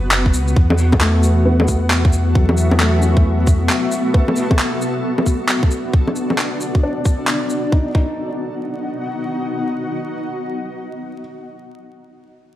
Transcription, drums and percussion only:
0.11 clap
0.26 kick
0.34 shaker
0.48 shaker
0.57 kick
0.70 low bongo
0.78 shaker
0.92 kick, low bongo
1.01 clap
1.23 shaker
1.60 low bongo
1.68 kick, shaker
1.90 clap
2.05 kick
2.13 shaker
2.35 kick
2.49 low bongo
2.57 shaker
2.71 low bongo
2.80 clap
3.02 shaker
3.17 kick
3.47 kick, shaker
3.69 clap
3.92 shaker
4.14 kick
4.28 low bongo
4.36 shaker
4.51 kick, low bongo
4.59 clap
4.81 shaker
5.18 low bongo
5.26 kick, shaker
5.48 clap
5.63 kick
5.71 shaker
5.94 kick
6.08 low bongo
6.16 shaker
6.30 low bongo
6.38 clap
6.61 shaker
6.75 kick
7.05 kick, shaker
7.27 clap
7.50 shaker
7.72 kick
7.95 kick

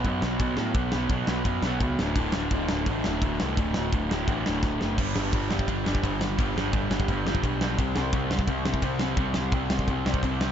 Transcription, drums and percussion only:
0.05 kick, ride
0.22 snare
0.40 kick, ride
0.57 snare
0.75 kick, ride
0.92 snare
1.10 kick, ride
1.27 snare
1.45 kick, ride
1.62 snare
1.81 kick, ride
1.99 snare
2.16 kick, ride
2.32 snare
2.51 kick, ride
2.69 snare
2.86 kick, ride
3.04 snare
3.22 kick, ride
3.40 snare
3.57 kick, ride
3.74 snare
3.93 kick, ride
4.11 snare
4.28 kick, ride
4.46 snare
4.63 kick, snare
4.81 snare
4.98 kick, crash
5.16 snare
5.33 kick, ride
5.51 snare
5.59 kick
5.68 kick, ride
5.86 snare
5.95 kick
6.04 kick, ride
6.21 snare
6.39 kick, ride
6.58 snare
6.73 kick, ride
6.91 snare
7.00 kick
7.08 kick, ride
7.27 snare
7.35 kick
7.44 kick, ride
7.61 snare
7.79 kick, ride
7.96 snare
8.13 kick, ride
8.31 snare
8.39 kick
8.48 kick, ride
8.65 snare
8.74 kick
8.82 kick, ride
8.99 snare
9.17 kick, ride
9.34 snare
9.52 kick, ride
9.70 snare
9.79 kick
9.88 kick, ride
10.06 snare
10.14 kick
10.23 kick, ride
10.41 snare

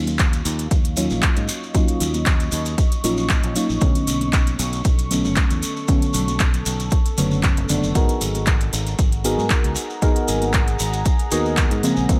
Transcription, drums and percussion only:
0.07 closed hi-hat, high conga, shekere
0.19 kick, clap, closed hi-hat, shekere
0.33 closed hi-hat, shekere
0.45 open hi-hat, shekere
0.59 closed hi-hat, shekere
0.71 kick, closed hi-hat, shekere
0.84 closed hi-hat, shekere
0.97 open hi-hat, shekere
1.10 low conga, shekere
1.23 kick, clap, closed hi-hat, shekere
1.36 closed hi-hat, shekere
1.48 open hi-hat, shekere
1.63 shekere
1.75 kick, closed hi-hat, shekere
1.87 closed hi-hat, shekere
2.00 open hi-hat, low conga, shekere
2.14 closed hi-hat, high conga, shekere
2.26 kick, clap, closed hi-hat, shekere
2.40 closed hi-hat, shekere
2.52 open hi-hat, shekere
2.65 closed hi-hat, shekere
2.78 kick, closed hi-hat, shekere
2.92 closed hi-hat, shekere
3.04 open hi-hat, shekere
3.17 shekere
3.30 kick, clap, closed hi-hat, shekere
3.43 closed hi-hat, shekere
3.56 open hi-hat, shekere
3.70 shekere
3.81 kick, closed hi-hat, shekere
3.95 closed hi-hat, shekere
4.07 open hi-hat, low conga, shekere
4.21 closed hi-hat, high conga, shekere
4.33 kick, clap, closed hi-hat, shekere
4.47 closed hi-hat, shekere
4.59 open hi-hat, shekere
4.73 closed hi-hat, shekere
4.85 kick, closed hi-hat, shekere
4.99 closed hi-hat, shekere
5.11 open hi-hat, shekere
5.24 low conga, shekere
5.36 kick, clap, closed hi-hat, shekere
5.50 closed hi-hat, shekere
5.63 open hi-hat, shekere
5.76 shekere
5.88 kick, closed hi-hat, shekere
6.02 closed hi-hat, shekere
6.14 open hi-hat, low conga, shekere
6.28 closed hi-hat, high conga, shekere
6.39 kick, clap, closed hi-hat, shekere
6.54 closed hi-hat, shekere
6.66 open hi-hat, shekere
6.80 closed hi-hat, shekere
6.91 kick, closed hi-hat, shekere
7.06 closed hi-hat, shekere
7.18 open hi-hat, shekere
7.31 shekere
7.43 kick, clap, closed hi-hat, shekere
7.57 closed hi-hat, shekere
7.69 open hi-hat, shekere
7.84 shekere
7.95 kick, closed hi-hat, shekere
8.09 closed hi-hat, shekere
8.21 open hi-hat, low conga, shekere
8.34 closed hi-hat, high conga, shekere
8.46 kick, clap, closed hi-hat, shekere
8.61 closed hi-hat, shekere
8.73 open hi-hat, shekere
8.87 closed hi-hat, shekere
8.99 kick, closed hi-hat, shekere
9.12 closed hi-hat, shekere
9.24 open hi-hat, shekere
9.38 low conga, shekere
9.50 kick, clap, closed hi-hat, shekere
9.64 closed hi-hat, shekere
9.75 open hi-hat, shekere
9.90 shekere
10.02 kick, closed hi-hat, shekere
10.16 closed hi-hat, shekere
10.28 open hi-hat, low conga, shekere
10.42 closed hi-hat, high conga, shekere
10.53 kick, clap, closed hi-hat, shekere
10.68 closed hi-hat, shekere
10.79 open hi-hat, shekere
10.93 closed hi-hat, shekere
11.05 kick, closed hi-hat, shekere
11.19 closed hi-hat, shekere
11.31 open hi-hat, shekere
11.45 shekere
11.57 kick, clap, closed hi-hat, shekere
11.71 closed hi-hat, shekere
11.83 open hi-hat, shekere
11.97 shekere
12.09 kick, closed hi-hat, shekere

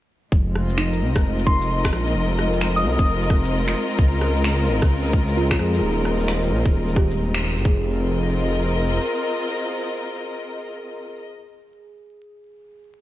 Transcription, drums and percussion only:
0.32 kick
0.56 cross-stick
0.70 shaker
0.78 finger snap
0.93 shaker
1.16 kick, cross-stick, shaker
1.39 shaker
1.47 kick
1.62 shaker
1.85 finger snap, kick, cross-stick, shaker
1.93 cross-stick
2.07 shaker
2.39 cross-stick
2.53 shaker
2.61 finger snap
2.76 shaker
2.99 kick, shaker
3.22 shaker
3.30 kick, cross-stick
3.45 shaker
3.68 finger snap, shaker
3.90 shaker
3.99 kick
4.21 cross-stick
4.37 shaker
4.44 finger snap
4.59 shaker
4.82 kick, cross-stick, shaker
5.06 shaker
5.13 kick
5.28 shaker
5.51 finger snap, kick, cross-stick, shaker
5.59 cross-stick
5.74 shaker
6.05 cross-stick
6.20 shaker
6.28 finger snap
6.43 shaker
6.66 kick, shaker
6.89 shaker
6.96 kick, cross-stick
7.11 shaker
7.34 finger snap, shaker
7.57 shaker
7.65 kick

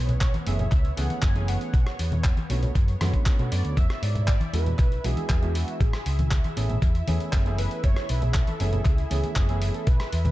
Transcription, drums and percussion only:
0.09 closed hi-hat, low conga
0.21 kick, clap, closed hi-hat
0.34 closed hi-hat, high conga
0.47 open hi-hat
0.59 closed hi-hat, low conga
0.71 kick, clap, closed hi-hat
0.85 closed hi-hat
0.97 open hi-hat
1.10 closed hi-hat, high conga
1.22 kick, clap, closed hi-hat
1.36 closed hi-hat
1.48 open hi-hat
1.61 closed hi-hat
1.74 kick, closed hi-hat
1.87 cross-stick, closed hi-hat
1.99 open hi-hat
2.12 closed hi-hat, high conga, low conga
2.24 kick, clap, closed hi-hat
2.37 closed hi-hat, high conga
2.50 open hi-hat
2.63 closed hi-hat, low conga
2.75 kick, closed hi-hat
2.88 closed hi-hat
3.01 cross-stick, open hi-hat, high conga
3.14 kick, closed hi-hat
3.26 kick, clap, open hi-hat
3.39 closed hi-hat
3.52 open hi-hat
3.65 closed hi-hat
3.77 kick, closed hi-hat
3.90 cross-stick, closed hi-hat
4.03 open hi-hat
4.15 closed hi-hat, low conga
4.28 kick, clap, closed hi-hat
4.40 closed hi-hat, high conga
4.54 open hi-hat
4.66 closed hi-hat, low conga
4.79 kick, clap, closed hi-hat
4.92 closed hi-hat
5.04 open hi-hat
5.17 closed hi-hat, high conga
5.29 kick, clap, closed hi-hat
5.43 closed hi-hat
5.55 open hi-hat
5.68 closed hi-hat
5.81 kick, closed hi-hat
5.93 cross-stick, closed hi-hat
6.06 open hi-hat
6.19 closed hi-hat, high conga, low conga
6.31 kick, clap, closed hi-hat
6.44 closed hi-hat, high conga
6.57 open hi-hat
6.69 closed hi-hat, low conga
6.82 kick, closed hi-hat
6.95 closed hi-hat
7.08 open hi-hat, high conga
7.20 closed hi-hat
7.33 kick, clap, open hi-hat
7.46 closed hi-hat
7.58 open hi-hat
7.71 closed hi-hat
7.84 kick, closed hi-hat
7.96 cross-stick, closed hi-hat
8.09 open hi-hat
8.22 closed hi-hat, low conga
8.34 kick, clap, closed hi-hat
8.47 closed hi-hat, high conga
8.60 open hi-hat
8.73 closed hi-hat, low conga
8.85 kick, clap, closed hi-hat
8.98 closed hi-hat
9.11 open hi-hat
9.24 closed hi-hat, high conga
9.36 kick, clap, closed hi-hat
9.49 closed hi-hat
9.62 open hi-hat
9.74 closed hi-hat
9.87 kick, closed hi-hat
10.00 cross-stick, closed hi-hat
10.13 open hi-hat
10.25 closed hi-hat, high conga, low conga

